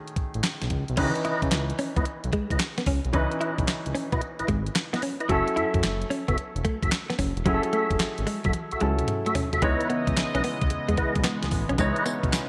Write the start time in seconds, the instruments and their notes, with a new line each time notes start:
Already playing: grand piano D#3 A3 C#4 G#4
0.08 closed hi-hat
0.16 analog synth bass A1, kick, closed hi-hat
0.34 analog synth bass A1, closed hi-hat
0.43 snare, clap, closed hi-hat
0.62 analog synth bass B1, snare, closed hi-hat
0.70 analog synth bass C#2, kick, closed hi-hat
0.88 analog synth bass B1, closed hi-hat
0.97 analog synth bass C#2, grand piano D#3 C#4 D#4 B4, clean electric guitar C#4, tonewheel organ E4 B4 D#5, kick, closed hi-hat, crash
1.03 grand piano E3
1.15 muted clean electric guitar stroke, closed hi-hat
1.24 analog synth bass C#3, tonewheel organ E4 B4 D#5, clean electric guitar E4, closed hi-hat
1.42 analog synth bass C#3, kick, closed hi-hat
1.51 analog synth bass C#2, muted clean electric guitar stroke, snare, clap, closed hi-hat
1.70 closed hi-hat
1.79 clean electric guitar C#4, open hi-hat
1.96 analog synth bass C#2, clean electric guitar B3, tonewheel organ E4 B4 D#5, kick, closed hi-hat
2.05 closed hi-hat
2.24 analog synth bass B1, closed hi-hat
2.33 clean electric guitar G#3, kick, closed hi-hat
2.50 analog synth bass C#2, tonewheel organ E4 B4 D#5, kick, closed hi-hat
2.59 muted clean electric guitar stroke, snare, clap, closed hi-hat
2.78 clean electric guitar B3, snare, closed hi-hat
2.86 analog synth bass C#2, clean electric guitar C#4, kick, open hi-hat
3.05 analog synth bass B1, closed hi-hat
3.13 analog synth bass C#2, grand piano E3 C#4 D#4 B4, clean electric guitar C#4, tonewheel organ E4 B4 D#5, kick, closed hi-hat
3.32 muted clean electric guitar stroke, closed hi-hat
3.41 clean electric guitar E4, tonewheel organ E4 B4 D#5, closed hi-hat
3.58 analog synth bass B1, kick, closed hi-hat
3.68 analog synth bass C#2, muted clean electric guitar stroke, snare, clap, closed hi-hat
3.86 analog synth bass C#2, closed hi-hat
3.95 clean electric guitar C#4, open hi-hat
4.12 analog synth bass B1, clean electric guitar B3, tonewheel organ E4 B4 D#5, kick, closed hi-hat
4.21 closed hi-hat
4.39 analog synth bass G#1, tonewheel organ E4 B4 D#5, closed hi-hat
4.48 analog synth bass G#1, clean electric guitar G#3, kick, closed hi-hat
4.66 closed hi-hat
4.75 muted clean electric guitar stroke, snare, clap, closed hi-hat
4.93 clean electric guitar B3, tonewheel organ E4 B4 D#5, snare, closed hi-hat
5.02 clean electric guitar C#4, open hi-hat
5.20 tonewheel organ E4 B4 D#5, closed hi-hat
5.28 analog synth bass F#1, grand piano F#3 C#4 E4 A4, clean electric guitar F#3, tonewheel organ F#4 A4 E5, kick, closed hi-hat
5.47 muted clean electric guitar stroke, closed hi-hat
5.56 analog synth bass F#2, clean electric guitar E4, tonewheel organ F#4 A4 E5, closed hi-hat
5.74 analog synth bass F#2, kick, closed hi-hat
5.83 analog synth bass F#1, muted clean electric guitar stroke, snare, clap, closed hi-hat
6.02 closed hi-hat
6.10 clean electric guitar C#4, open hi-hat
6.28 analog synth bass F#1, clean electric guitar B3, tonewheel organ F#4 A4 E5, kick, closed hi-hat
6.38 closed hi-hat
6.55 analog synth bass E1, closed hi-hat
6.65 clean electric guitar A3, kick, closed hi-hat
6.82 analog synth bass F#1, tonewheel organ F#4 A4 E5, kick, closed hi-hat
6.92 muted clean electric guitar stroke, snare, clap, closed hi-hat
7.10 clean electric guitar B3, snare, closed hi-hat
7.19 analog synth bass F#1, clean electric guitar C#4, kick, open hi-hat
7.37 analog synth bass E1, closed hi-hat
7.45 analog synth bass F#1, grand piano F#3 C#4 E4 G#4, clean electric guitar F#3, tonewheel organ F#4 A4 E5, kick, closed hi-hat
7.54 grand piano A4
7.63 muted clean electric guitar stroke, closed hi-hat
7.73 clean electric guitar A3, tonewheel organ F#4 A4 E5, closed hi-hat
7.91 analog synth bass E1, kick, closed hi-hat
8.00 analog synth bass G#1, muted clean electric guitar stroke, snare, clap, closed hi-hat
8.18 analog synth bass G#1, closed hi-hat
8.27 clean electric guitar G#3, open hi-hat
8.44 analog synth bass F#1, clean electric guitar F#3, tonewheel organ F#4 A4 E5, kick, closed hi-hat
8.53 closed hi-hat, high tom
8.71 analog synth bass C#2, tonewheel organ F#4 A4 E5, closed hi-hat
8.80 analog synth bass C#2, grand piano F#3 C#4 E4 A4, clean electric guitar G#3, closed hi-hat
8.99 closed hi-hat, mid tom
9.08 muted clean electric guitar stroke, closed hi-hat, mid tom
9.26 clean electric guitar A3, tonewheel organ F#4 A4 E5, closed hi-hat
9.35 clean electric guitar C#4, floor tom, open hi-hat
9.53 tonewheel organ F#4 A4 E5, closed hi-hat, floor tom
9.62 analog synth bass C#2, analog synth pad C#3 E3 G#3 B3 D#5, clean electric guitar G#3, grand piano B3 D#4 E4 C#5, tonewheel organ E4 B4 D#5, kick, closed hi-hat
9.81 closed hi-hat
9.90 clean electric guitar B3, closed hi-hat
10.07 analog synth bass C#2, muted clean electric guitar stroke, kick, closed hi-hat
10.17 analog synth bass B1, muted clean electric guitar stroke, snare, clap, closed hi-hat
10.34 analog synth bass B1, clean electric guitar C#4, tonewheel organ E4 B4 D#5, closed hi-hat
10.44 clean electric guitar B3, open hi-hat
10.61 analog synth bass C#2, kick, closed hi-hat
10.70 analog synth bass E2, muted clean electric guitar stroke, closed hi-hat
10.89 analog synth bass E2, clean electric guitar G#3, closed hi-hat
10.97 clean electric guitar B3, tonewheel organ E4 B4 D#5, kick, closed hi-hat
11.15 analog synth bass B1, kick, closed hi-hat
11.24 clean electric guitar B3, snare, clap, closed hi-hat
11.42 analog synth bass C#2, muted clean electric guitar stroke, snare, closed hi-hat
11.51 analog synth bass A1, kick, open hi-hat
11.69 analog synth bass B1, clean electric guitar C#4, closed hi-hat
11.78 analog synth bass C#2, clean electric guitar G#3, grand piano B3 D#4 E4 C#5, analog synth pad C#4, tonewheel organ E4 B4 D#5, kick, closed hi-hat, tambourine
11.96 closed hi-hat
12.06 clean electric guitar B3, closed hi-hat, tambourine
12.23 analog synth bass B1, muted clean electric guitar stroke, kick, closed hi-hat
12.32 analog synth bass C#2, muted clean electric guitar stroke, snare, clap, closed hi-hat, tambourine